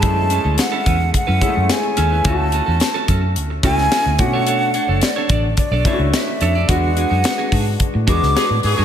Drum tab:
HH |x-x-x-x-x-x-x-x-|x-x-x-x-x-x-x-x-|x-x-x-x-x-x-x-x-|x-x-x-o-x-x-x-o-|
SD |----o-------o---|----o------oo---|----o-------o---|----o------oo---|
BD |o-----o-o-o-----|o-----o---o---o-|------o-o-o-----|o-----o-o-o-----|